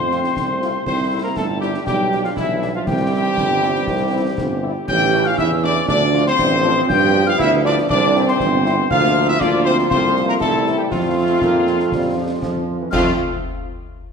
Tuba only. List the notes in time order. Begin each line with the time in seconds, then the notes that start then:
Already playing: F2
0.36 C2
0.86 C2
1.36 G1
1.86 B1
2.36 B1
2.86 C2
3.37 G1
3.88 C2
4.38 G1
4.88 A1
5.38 E2
5.88 D2
6.39 A1
6.89 G2
7.39 D2
7.90 C2
8.40 G1
8.91 D2
9.41 D2
9.90 C2
10.41 C2
10.92 F2
11.42 F2
11.91 F2
12.42 F2
12.92 F2